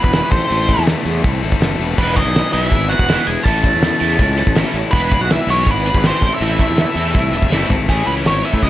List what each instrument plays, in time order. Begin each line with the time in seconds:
Already playing: string machine E3 G#3 B3 F#4, overdriven electric guitar B3 E4 G#4
0.04 fingered electric bass E1, trumpet B3, lead electric guitar B4, kick
0.13 overdriven electric guitar B3 E4 G#4, snare, open hi-hat, shaker
0.31 fingered electric bass A1, string machine C3 E3 A3 E4, overdriven electric guitar C4 E4 A4, trumpet C4, lead electric guitar C5, kick, open hi-hat, shaker
0.50 fingered electric bass A1, overdriven electric guitar C4 E4 A4, open hi-hat, shaker
0.68 overdriven electric guitar E4 A4, kick, open hi-hat, shaker
0.78 fingered electric bass E2
0.86 overdriven electric guitar C4 E4 A4, snare, open hi-hat, shaker
1.05 fingered electric bass E2, open hi-hat, shaker
1.23 fingered electric bass C2, overdriven electric guitar C4 E4 A4, kick, open hi-hat, shaker
1.41 fingered electric bass G#1, overdriven electric guitar E4 A4, open hi-hat, shaker
1.52 kick
1.60 fingered electric bass F#1, overdriven electric guitar C4 E4 A4, snare, open hi-hat, shaker
1.79 fingered electric bass E1, overdriven electric guitar E4 A4, open hi-hat, shaker
1.97 fingered electric bass E1, distorted electric guitar E3 G#3 B3 E4, string machine G#3 B3 F#4, overdriven electric guitar B3 E4 G#4, trumpet B3, lead electric guitar B4, kick, crash, shaker
2.16 trumpet D#4, overdriven electric guitar E4 G#4, lead electric guitar D#5, muted distorted electric guitar stroke, kick, open hi-hat, shaker
2.25 fingered electric bass B1
2.34 overdriven electric guitar B3 E4 G#4, muted distorted electric guitar stroke, snare, open hi-hat, shaker
2.52 fingered electric bass B1, distorted electric guitar E3 G#3 B3 E4, trumpet E4, lead electric guitar E5, open hi-hat, shaker
2.71 fingered electric bass G#1, overdriven electric guitar B3 E4 G#4, muted distorted electric guitar stroke, kick, open hi-hat, shaker
2.88 trumpet F#4, overdriven electric guitar G#4, lead electric guitar F#5, muted distorted electric guitar stroke, open hi-hat, shaker
2.92 overdriven electric guitar E4
2.99 fingered electric bass E1, kick
3.08 distorted electric guitar E3 G#3 B3 E4, overdriven electric guitar B3 E4 G#4, snare, open hi-hat, shaker
3.25 fingered electric bass E1, overdriven electric guitar E4 G#4, trumpet G#4, lead electric guitar G#5, muted distorted electric guitar stroke, open hi-hat, shaker
3.43 fingered electric bass A1, string machine C#3 A3 E4, distorted electric guitar E3 A3, overdriven electric guitar C#4 E4, trumpet A4, lead electric guitar A5, kick, open hi-hat, shaker
3.47 distorted electric guitar C#4 E4, overdriven electric guitar A4
3.63 overdriven electric guitar E4 A4, muted distorted electric guitar stroke, kick, open hi-hat, shaker
3.73 fingered electric bass E2
3.82 overdriven electric guitar C#4 E4 A4, muted distorted electric guitar stroke, snare, open hi-hat, shaker
4.00 fingered electric bass E2, distorted electric guitar E3 A3 C#4 E4, open hi-hat, shaker
4.19 fingered electric bass C#2, overdriven electric guitar C#4 E4 A4, muted distorted electric guitar stroke, kick, open hi-hat, shaker
4.37 overdriven electric guitar E4 A4, muted distorted electric guitar stroke, open hi-hat, shaker
4.47 fingered electric bass A1, kick
4.56 distorted electric guitar E3 A3 C#4 E4, overdriven electric guitar C#4 E4 A4, snare, open hi-hat, shaker
4.74 fingered electric bass A1, overdriven electric guitar E4 A4, muted distorted electric guitar stroke, open hi-hat, shaker
4.91 fingered electric bass E1, string machine E3 G#3 F#4, distorted electric guitar E3 G#3 B3 E4, overdriven electric guitar B3 E4 G#4, trumpet B3, lead electric guitar B4, kick, open hi-hat, shaker
5.11 overdriven electric guitar E4 G#4, muted distorted electric guitar stroke, kick, open hi-hat, shaker
5.19 fingered electric bass B1, trumpet F#4, lead electric guitar F#5
5.30 overdriven electric guitar B3 E4 G#4, trumpet E4, lead electric guitar E5, muted distorted electric guitar stroke, snare, open hi-hat, shaker
5.47 fingered electric bass B1, distorted electric guitar E3 G#3 B3 E4, trumpet C#4, lead electric guitar C#5, open hi-hat, shaker
5.66 fingered electric bass G#1, overdriven electric guitar B3 E4 G#4, trumpet B3, muted distorted electric guitar stroke, kick, open hi-hat, shaker
5.71 lead electric guitar B4
5.84 overdriven electric guitar E4 G#4, muted distorted electric guitar stroke, open hi-hat, shaker
5.94 fingered electric bass G#1, trumpet B3, lead electric guitar B4, kick
6.03 distorted electric guitar E3 G#3 B3 E4, overdriven electric guitar B3 E4 G#4, trumpet C4, snare, open hi-hat, shaker
6.07 lead electric guitar C5
6.21 fingered electric bass A1, string machine C3 A3 E4, overdriven electric guitar C4 E4 A4, muted distorted electric guitar stroke, kick, open hi-hat, shaker
6.32 trumpet E4, lead electric guitar E5
6.39 fingered electric bass A1, distorted electric guitar E3 A3 C4 E4, overdriven electric guitar C4 E4 A4, trumpet E4, open hi-hat, shaker
6.43 lead electric guitar E5
6.59 overdriven electric guitar E4 A4, muted distorted electric guitar stroke, kick, open hi-hat, shaker
6.68 fingered electric bass E2
6.77 overdriven electric guitar C4 E4 A4, muted distorted electric guitar stroke, snare, open hi-hat, shaker
6.95 fingered electric bass E2, distorted electric guitar E3 A3 C4 E4, open hi-hat, shaker
7.14 fingered electric bass C2, overdriven electric guitar C4 E4 A4, muted distorted electric guitar stroke, kick, open hi-hat, shaker
7.32 fingered electric bass E1, overdriven electric guitar E4 A4, muted distorted electric guitar stroke, open hi-hat, shaker
7.42 kick
7.50 fingered electric bass F#1, distorted electric guitar E3 A3 C4 E4, overdriven electric guitar C4 E4 A4, snare, shaker
7.69 fingered electric bass G#1, overdriven electric guitar E4 A4, muted distorted electric guitar stroke, floor tom, shaker
7.88 fingered electric bass A1, distorted electric guitar A2 E3 A3 C#4, overdriven electric guitar E3 A3 C#4, lead electric guitar G#4, kick, closed hi-hat
7.92 distorted electric guitar E4
8.07 fingered electric bass C#2, lead electric guitar B4, closed hi-hat
8.16 closed hi-hat
8.25 fingered electric bass G#1, lead electric guitar C#5, snare, closed hi-hat
8.44 overdriven electric guitar E3 A3 C#4, lead electric guitar E5, closed hi-hat
8.53 fingered electric bass A2, kick
8.62 fingered electric bass C#2, distorted electric guitar C#3 E3 G#3 C#4 E4, overdriven electric guitar E3 G#3 C#4, lead electric guitar D#5, kick, closed hi-hat